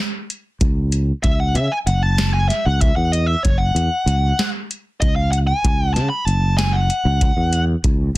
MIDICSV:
0, 0, Header, 1, 4, 480
1, 0, Start_track
1, 0, Tempo, 628931
1, 948, Time_signature, 7, 3, 24, 8
1, 6240, End_track
2, 0, Start_track
2, 0, Title_t, "Lead electric guitar"
2, 0, Program_c, 0, 29
2, 939, Note_on_c, 0, 76, 84
2, 1055, Note_off_c, 0, 76, 0
2, 1068, Note_on_c, 0, 78, 83
2, 1188, Note_on_c, 0, 76, 81
2, 1191, Note_off_c, 0, 78, 0
2, 1311, Note_off_c, 0, 76, 0
2, 1311, Note_on_c, 0, 80, 75
2, 1349, Note_off_c, 0, 80, 0
2, 1426, Note_on_c, 0, 78, 81
2, 1546, Note_off_c, 0, 78, 0
2, 1546, Note_on_c, 0, 81, 92
2, 1779, Note_off_c, 0, 81, 0
2, 1782, Note_on_c, 0, 80, 78
2, 1895, Note_off_c, 0, 80, 0
2, 1898, Note_on_c, 0, 76, 85
2, 2026, Note_off_c, 0, 76, 0
2, 2026, Note_on_c, 0, 78, 78
2, 2146, Note_off_c, 0, 78, 0
2, 2149, Note_on_c, 0, 76, 90
2, 2257, Note_off_c, 0, 76, 0
2, 2260, Note_on_c, 0, 78, 84
2, 2381, Note_off_c, 0, 78, 0
2, 2381, Note_on_c, 0, 75, 93
2, 2491, Note_off_c, 0, 75, 0
2, 2491, Note_on_c, 0, 76, 77
2, 2618, Note_on_c, 0, 73, 75
2, 2620, Note_off_c, 0, 76, 0
2, 2730, Note_on_c, 0, 78, 83
2, 2735, Note_off_c, 0, 73, 0
2, 3428, Note_off_c, 0, 78, 0
2, 3820, Note_on_c, 0, 75, 88
2, 3933, Note_off_c, 0, 75, 0
2, 3937, Note_on_c, 0, 77, 78
2, 4053, Note_off_c, 0, 77, 0
2, 4057, Note_on_c, 0, 78, 93
2, 4095, Note_off_c, 0, 78, 0
2, 4175, Note_on_c, 0, 80, 92
2, 4529, Note_off_c, 0, 80, 0
2, 4532, Note_on_c, 0, 81, 91
2, 4649, Note_off_c, 0, 81, 0
2, 4652, Note_on_c, 0, 83, 87
2, 4771, Note_off_c, 0, 83, 0
2, 4771, Note_on_c, 0, 81, 87
2, 5017, Note_off_c, 0, 81, 0
2, 5020, Note_on_c, 0, 80, 97
2, 5135, Note_on_c, 0, 78, 78
2, 5147, Note_off_c, 0, 80, 0
2, 5829, Note_off_c, 0, 78, 0
2, 6240, End_track
3, 0, Start_track
3, 0, Title_t, "Fretless electric bass"
3, 0, Program_c, 1, 35
3, 464, Note_on_c, 1, 37, 75
3, 846, Note_off_c, 1, 37, 0
3, 947, Note_on_c, 1, 37, 79
3, 1181, Note_on_c, 1, 49, 83
3, 1192, Note_off_c, 1, 37, 0
3, 1279, Note_off_c, 1, 49, 0
3, 1422, Note_on_c, 1, 30, 81
3, 1900, Note_off_c, 1, 30, 0
3, 2032, Note_on_c, 1, 37, 95
3, 2221, Note_off_c, 1, 37, 0
3, 2265, Note_on_c, 1, 40, 77
3, 2552, Note_off_c, 1, 40, 0
3, 2633, Note_on_c, 1, 30, 92
3, 2821, Note_off_c, 1, 30, 0
3, 2860, Note_on_c, 1, 40, 88
3, 2958, Note_off_c, 1, 40, 0
3, 3099, Note_on_c, 1, 37, 94
3, 3293, Note_off_c, 1, 37, 0
3, 3831, Note_on_c, 1, 37, 69
3, 4209, Note_off_c, 1, 37, 0
3, 4307, Note_on_c, 1, 37, 83
3, 4547, Note_on_c, 1, 49, 81
3, 4558, Note_off_c, 1, 37, 0
3, 4642, Note_off_c, 1, 49, 0
3, 4780, Note_on_c, 1, 30, 81
3, 5257, Note_off_c, 1, 30, 0
3, 5381, Note_on_c, 1, 37, 94
3, 5573, Note_off_c, 1, 37, 0
3, 5622, Note_on_c, 1, 40, 85
3, 5908, Note_off_c, 1, 40, 0
3, 5985, Note_on_c, 1, 37, 95
3, 6175, Note_off_c, 1, 37, 0
3, 6240, End_track
4, 0, Start_track
4, 0, Title_t, "Drums"
4, 229, Note_on_c, 9, 42, 55
4, 305, Note_off_c, 9, 42, 0
4, 465, Note_on_c, 9, 42, 73
4, 466, Note_on_c, 9, 36, 105
4, 541, Note_off_c, 9, 42, 0
4, 543, Note_off_c, 9, 36, 0
4, 704, Note_on_c, 9, 42, 64
4, 780, Note_off_c, 9, 42, 0
4, 944, Note_on_c, 9, 42, 76
4, 945, Note_on_c, 9, 36, 111
4, 1020, Note_off_c, 9, 42, 0
4, 1021, Note_off_c, 9, 36, 0
4, 1184, Note_on_c, 9, 42, 51
4, 1261, Note_off_c, 9, 42, 0
4, 1428, Note_on_c, 9, 42, 67
4, 1504, Note_off_c, 9, 42, 0
4, 1666, Note_on_c, 9, 38, 98
4, 1666, Note_on_c, 9, 42, 70
4, 1743, Note_off_c, 9, 38, 0
4, 1743, Note_off_c, 9, 42, 0
4, 1910, Note_on_c, 9, 38, 31
4, 1910, Note_on_c, 9, 42, 58
4, 1987, Note_off_c, 9, 38, 0
4, 1987, Note_off_c, 9, 42, 0
4, 2147, Note_on_c, 9, 42, 82
4, 2150, Note_on_c, 9, 36, 94
4, 2223, Note_off_c, 9, 42, 0
4, 2226, Note_off_c, 9, 36, 0
4, 2391, Note_on_c, 9, 42, 58
4, 2468, Note_off_c, 9, 42, 0
4, 2630, Note_on_c, 9, 42, 82
4, 2631, Note_on_c, 9, 36, 102
4, 2707, Note_off_c, 9, 42, 0
4, 2708, Note_off_c, 9, 36, 0
4, 2871, Note_on_c, 9, 42, 58
4, 2947, Note_off_c, 9, 42, 0
4, 3110, Note_on_c, 9, 42, 56
4, 3187, Note_off_c, 9, 42, 0
4, 3351, Note_on_c, 9, 38, 100
4, 3351, Note_on_c, 9, 42, 65
4, 3427, Note_off_c, 9, 38, 0
4, 3427, Note_off_c, 9, 42, 0
4, 3593, Note_on_c, 9, 42, 55
4, 3669, Note_off_c, 9, 42, 0
4, 3829, Note_on_c, 9, 42, 77
4, 3830, Note_on_c, 9, 36, 104
4, 3906, Note_off_c, 9, 42, 0
4, 3907, Note_off_c, 9, 36, 0
4, 4068, Note_on_c, 9, 42, 54
4, 4144, Note_off_c, 9, 42, 0
4, 4309, Note_on_c, 9, 36, 112
4, 4309, Note_on_c, 9, 42, 84
4, 4385, Note_off_c, 9, 42, 0
4, 4386, Note_off_c, 9, 36, 0
4, 4550, Note_on_c, 9, 38, 29
4, 4550, Note_on_c, 9, 42, 57
4, 4626, Note_off_c, 9, 38, 0
4, 4626, Note_off_c, 9, 42, 0
4, 4790, Note_on_c, 9, 42, 62
4, 4866, Note_off_c, 9, 42, 0
4, 5026, Note_on_c, 9, 38, 96
4, 5026, Note_on_c, 9, 42, 73
4, 5102, Note_off_c, 9, 38, 0
4, 5102, Note_off_c, 9, 42, 0
4, 5265, Note_on_c, 9, 42, 64
4, 5342, Note_off_c, 9, 42, 0
4, 5504, Note_on_c, 9, 42, 90
4, 5505, Note_on_c, 9, 36, 107
4, 5581, Note_off_c, 9, 42, 0
4, 5582, Note_off_c, 9, 36, 0
4, 5744, Note_on_c, 9, 42, 64
4, 5820, Note_off_c, 9, 42, 0
4, 5984, Note_on_c, 9, 42, 83
4, 5985, Note_on_c, 9, 36, 108
4, 6060, Note_off_c, 9, 42, 0
4, 6061, Note_off_c, 9, 36, 0
4, 6240, End_track
0, 0, End_of_file